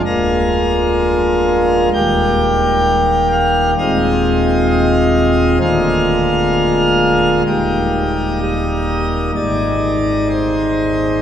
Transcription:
0.06 1.89 D1 medium
0.06 1.89 D2 medium
0.06 1.89 G#3 soft
0.06 1.89 A#3 soft
0.06 1.89 F4 soft
0.06 1.89 A#4 loud
1.93 3.74 D#1 medium
1.93 3.74 D#2 medium
1.93 3.74 G3 soft
1.93 3.74 A#3 medium
1.93 3.74 G4 medium
1.93 3.28 G5 loud
3.32 3.71 F5 loud
3.78 5.58 D#1 medium
3.78 5.58 D#2 medium
3.78 5.58 G#3 soft
3.78 5.58 C4 soft
3.78 5.58 F4 soft
3.78 4.67 D#5 medium
4.70 5.59 D#5 loud
5.61 7.42 D1 medium
5.61 7.42 D2 medium
5.61 7.42 G#3 soft
5.61 7.42 A#3 soft
5.61 7.42 F4 soft
5.61 7.43 F5 loud
7.46 9.31 D#1 soft
7.46 9.31 D#2 soft
7.46 9.31 G3 soft
7.46 9.31 A#3 soft
7.46 9.31 D#4 soft
7.46 8.39 G4 medium
8.42 9.32 D#5 loud
9.35 11.22 G#1 medium
9.35 11.22 G#2 medium
9.35 11.22 D#3 soft
9.35 11.22 G#3 soft
9.35 11.22 D#4 soft
9.35 10.28 D5 medium
10.30 11.22 C5 medium

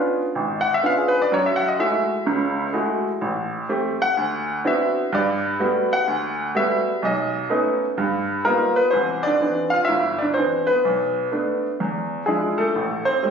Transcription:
0.00 0.21 B3 medium
0.00 0.21 C#4 soft
0.00 0.21 D4 medium
0.00 0.21 F4 medium
0.35 0.77 G#1 medium
0.61 0.72 F#5 medium
0.74 0.82 E5 medium
0.83 1.17 B3 medium
0.83 1.17 C#4 soft
0.83 1.17 D4 soft
0.83 1.17 F4 medium
0.83 1.00 F5 medium
0.98 1.14 G#4 medium
1.08 1.19 B4 medium
1.22 1.30 D5 medium
1.32 1.73 F#2 medium
1.32 1.73 F#3 medium
1.32 1.48 C#5 medium
1.46 1.62 E5 medium
1.56 1.67 F#5 medium
1.68 1.77 D#5 medium
1.79 2.12 G#3 medium
1.79 2.12 A3 medium
1.79 2.13 E4 medium
1.79 2.13 F#4 medium
1.79 2.70 E5 medium
2.26 2.68 C#2 medium
2.26 2.68 C#3 medium
2.73 3.07 G#3 medium
2.73 3.07 A3 medium
2.73 3.08 E4 soft
2.73 3.07 F#4 medium
3.21 3.63 A1 medium
3.69 4.03 A3 medium
3.69 4.03 C4 medium
3.69 4.03 G4 medium
4.02 4.61 F#5 loud
4.17 4.58 D2 medium
4.65 4.98 B3 medium
4.65 4.98 C4 soft
4.65 4.98 D4 soft
4.65 4.98 E4 soft
4.65 4.99 F#4 medium
4.65 5.10 E5 medium
5.13 5.54 G2 medium
5.13 5.89 D5 medium
5.60 5.93 G3 medium
5.60 5.93 A3 soft
5.60 5.94 B3 medium
5.60 5.94 F#4 medium
5.93 6.51 F#5 loud
6.07 6.49 D2 medium
6.55 6.88 G3 medium
6.55 6.88 A3 medium
6.55 6.89 B3 soft
6.55 6.89 F#4 medium
6.55 7.00 E5 medium
7.02 7.44 B1 medium
7.02 7.79 D#5 medium
7.50 7.84 A3 medium
7.50 7.84 B3 medium
7.50 7.84 C#4 soft
7.50 7.84 D#4 medium
7.98 8.39 G2 medium
8.45 8.79 G3 medium
8.45 8.76 A#3 medium
8.45 8.78 B3 medium
8.45 8.79 D#4 medium
8.45 8.79 F4 medium
8.45 8.78 A#4 medium
8.76 8.93 B3 medium
8.76 8.93 B4 medium
8.91 9.34 C2 medium
8.91 9.34 E3 medium
8.91 9.23 C4 medium
8.91 9.25 C5 medium
9.23 9.40 D4 medium
9.23 9.68 D5 medium
9.41 9.74 E3 soft
9.41 9.75 B3 soft
9.41 9.75 C4 soft
9.41 9.75 D4 medium
9.70 9.88 F4 medium
9.70 9.86 F5 medium
9.85 10.20 E5 medium
9.89 10.30 G1 medium
9.89 10.18 E4 medium
10.18 10.27 D4 medium
10.18 10.23 D5 medium
10.34 10.70 E3 medium
10.34 10.69 B3 soft
10.34 10.67 C4 medium
10.34 10.71 D4 medium
10.34 10.68 C5 medium
10.67 11.28 B3 medium
10.67 11.27 B4 medium
10.85 11.26 B1 medium
11.32 11.65 A3 medium
11.32 11.66 B3 soft
11.32 11.66 D4 medium
11.80 12.21 E2 medium
12.26 12.61 F3 soft
12.26 12.57 G#3 medium
12.26 12.61 D4 soft
12.26 12.61 E4 medium
12.26 12.60 G#4 medium
12.58 13.04 A3 medium
12.58 13.08 A4 medium
12.75 13.16 A1 medium
13.05 13.22 C4 medium
13.05 13.31 C5 medium
13.23 13.31 G3 medium
13.23 13.31 A3 soft
13.23 13.31 C4 medium

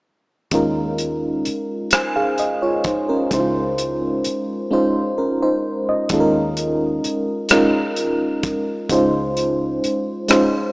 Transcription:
0.51 1.41 D#2 medium
0.51 1.80 G#3 medium
0.51 1.80 C#4 medium
0.51 1.80 D#4 medium
0.51 1.81 F4 medium
0.51 1.81 A#4 medium
0.51 kick medium
0.51 closed hi-hat medium
0.98 closed hi-hat soft
1.45 muted fingered electric bass stroke soft
1.45 closed hi-hat soft
1.91 2.14 C5 soft
1.91 2.14 G#5 medium
1.91 cross-stick medium
1.91 closed hi-hat medium
2.16 2.38 G#4 soft
2.16 2.37 F5 medium
2.38 2.61 D#5 medium
2.38 closed hi-hat soft
2.62 2.84 F4 soft
2.62 2.84 C#5 medium
2.84 3.08 D#4 soft
2.84 3.07 C5 medium
2.84 kick medium
2.84 closed hi-hat soft
3.09 3.30 C#4 soft
3.09 3.52 A#4 soft
3.31 4.20 C#2 medium
3.31 4.59 G#3 medium
3.31 4.59 C#4 medium
3.31 4.60 D#4 medium
3.31 3.38 E4 soft
3.31 4.60 C5 medium
3.31 kick medium
3.31 closed hi-hat medium
3.39 4.63 F4 medium
3.78 closed hi-hat soft
4.24 muted fingered electric bass stroke soft
4.24 closed hi-hat soft
4.71 5.98 G#3 medium
4.71 5.17 C#4 medium
4.71 5.18 D#4 medium
4.71 5.18 F4 medium
4.71 5.18 C5 medium
5.18 5.40 C#4 soft
5.18 5.40 A#4 soft
5.42 5.86 D#4 soft
5.42 5.86 C5 medium
5.89 6.32 D#5 medium
6.09 6.99 D#2 medium
6.09 7.38 G#3 medium
6.09 7.39 C#4 medium
6.09 7.39 D#4 medium
6.09 7.39 F4 medium
6.09 kick medium
6.09 closed hi-hat medium
6.14 6.18 A4 medium
6.20 7.43 A#4 medium
6.57 closed hi-hat soft
7.04 muted fingered electric bass stroke soft
7.04 closed hi-hat soft
7.49 8.78 G#3 medium
7.49 8.78 C#4 medium
7.49 8.79 D#4 medium
7.49 8.79 F4 medium
7.49 cross-stick medium
7.49 closed hi-hat medium
7.53 8.79 A#4 medium
7.96 closed hi-hat soft
8.43 kick medium
8.43 closed hi-hat soft
8.89 9.79 C#2 medium
8.89 10.17 G#3 medium
8.89 10.18 C#4 medium
8.89 10.18 D#4 medium
8.89 10.18 F4 medium
8.89 10.18 C5 medium
8.89 kick medium
8.89 closed hi-hat medium
9.37 closed hi-hat soft
9.84 muted fingered electric bass stroke soft
9.84 closed hi-hat soft
10.28 10.72 G#3 medium
10.28 10.72 C#4 medium
10.28 10.72 D#4 medium
10.28 10.72 F4 medium
10.28 10.72 C5 medium
10.28 cross-stick medium
10.28 closed hi-hat medium

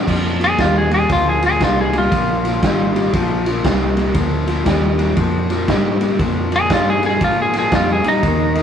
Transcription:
0.07 0.57 F2 medium
0.07 0.37 A#2 medium
0.07 0.37 F3 medium
0.07 kick medium
0.07 snare soft
0.07 crash loud
0.40 0.56 A#2 medium
0.40 0.56 F3 medium
0.40 snare soft
0.40 ride medium
0.44 0.59 G#4 loud
0.58 1.08 D#2 loud
0.58 0.88 A#2 medium
0.58 0.88 G3 loud
0.58 0.76 F4 medium
0.58 kick medium
0.58 snare loud
0.58 ride medium
0.78 0.93 G#4 medium
0.91 1.07 A#2 medium
0.91 1.08 G3 medium
0.91 1.10 G#4 medium
0.91 snare soft
0.91 ride medium
1.09 1.59 D2 medium
1.09 1.39 A#2 medium
1.09 1.39 F3 loud
1.09 1.27 F4 medium
1.09 kick medium
1.09 snare soft
1.09 ride medium
1.29 1.44 G#4 medium
1.43 1.59 A#2 medium
1.43 1.59 F3 medium
1.43 1.61 G#4 medium
1.43 snare soft
1.43 ride medium
1.60 2.10 C2 loud
1.60 1.90 A#2 medium
1.60 1.90 G3 medium
1.60 kick medium
1.60 snare loud
1.60 ride medium
1.64 1.79 F4 medium
1.81 1.96 G#4 medium
1.93 2.09 A#2 medium
1.93 2.10 G3 medium
1.93 snare soft
1.93 ride medium
1.98 3.45 F4 medium
2.11 2.61 A#1 medium
2.11 2.41 A#2 medium
2.11 2.41 F3 loud
2.11 kick medium
2.11 ride medium
2.44 2.60 A#2 medium
2.44 2.60 F3 medium
2.44 snare soft
2.44 ride medium
2.62 3.12 G#1 loud
2.62 2.92 A#2 medium
2.62 2.92 G3 medium
2.62 kick medium
2.62 snare loud
2.62 ride medium
2.95 3.11 A#2 medium
2.95 3.11 G3 medium
2.95 snare soft
2.95 ride medium
3.13 3.63 A#1 medium
3.13 3.43 A#2 medium
3.13 3.43 F3 loud
3.13 kick medium
3.13 snare soft
3.13 ride medium
3.46 3.62 A#2 medium
3.46 3.63 F3 medium
3.46 snare soft
3.46 ride medium
3.64 4.14 C2 loud
3.64 3.93 A#2 medium
3.64 3.94 G3 loud
3.64 kick medium
3.64 snare loud
3.64 ride medium
3.96 4.13 A#2 medium
3.96 4.13 G3 medium
3.96 snare soft
3.96 ride medium
4.14 4.64 D2 medium
4.14 4.44 A#2 medium
4.14 4.44 F3 medium
4.14 kick medium
4.14 snare soft
4.14 ride medium
4.47 4.64 A#2 medium
4.47 4.64 F3 medium
4.47 snare soft
4.47 ride medium
4.65 5.15 D#2 loud
4.65 4.95 A#2 medium
4.65 4.95 G3 medium
4.65 kick medium
4.65 snare loud
4.65 ride medium
4.98 5.14 A#2 medium
4.98 5.15 G3 medium
4.98 snare soft
4.98 ride medium
5.16 5.66 F2 medium
5.16 5.46 A#2 medium
5.16 5.46 F3 loud
5.16 kick medium
5.16 ride medium
5.50 5.66 A#2 medium
5.50 5.66 F3 medium
5.50 snare soft
5.50 ride medium
5.68 6.18 G#2 loud
5.68 5.97 A#2 medium
5.68 5.98 G3 loud
5.68 kick medium
5.68 snare loud
5.68 ride medium
6.00 6.17 A#2 medium
6.00 6.17 G3 medium
6.00 snare soft
6.00 ride medium
6.19 6.69 F2 medium
6.19 6.48 A#2 medium
6.19 6.49 F3 medium
6.19 kick medium
6.19 snare soft
6.19 ride medium
6.51 6.68 A#2 medium
6.51 6.68 F3 medium
6.51 snare soft
6.51 ride medium
6.56 6.71 G#4 loud
6.69 7.19 G2 loud
6.69 6.99 A#2 medium
6.69 6.99 G3 medium
6.69 kick medium
6.69 snare loud
6.69 ride medium
6.74 6.88 F4 medium
6.90 7.05 G#4 medium
7.02 7.19 A#2 medium
7.02 7.19 G3 medium
7.02 snare soft
7.02 ride medium
7.06 7.21 G#4 loud
7.21 7.70 G#2 medium
7.21 7.50 A#2 medium
7.21 7.50 F3 loud
7.21 7.39 F4 medium
7.21 kick medium
7.21 ride medium
7.42 7.56 G#4 loud
7.53 7.70 A#2 medium
7.53 7.70 F3 medium
7.53 snare soft
7.53 ride medium
7.59 7.73 G#4 medium
7.72 8.03 F2 loud
7.72 8.01 A#2 medium
7.72 8.02 G3 medium
7.72 7.90 F4 medium
7.72 kick medium
7.72 snare loud
7.72 ride medium
7.93 8.07 G#4 medium
8.04 8.21 A#2 medium
8.04 8.21 G3 medium
8.04 muted fingered electric bass stroke soft
8.04 snare soft
8.04 ride medium
8.08 8.63 D#4 loud
8.23 8.63 D#2 medium
8.23 8.52 D#3 medium
8.23 8.52 A#3 medium
8.23 kick medium
8.23 ride medium
8.55 8.63 D#3 medium
8.55 8.63 A#3 medium
8.55 snare soft
8.55 ride medium

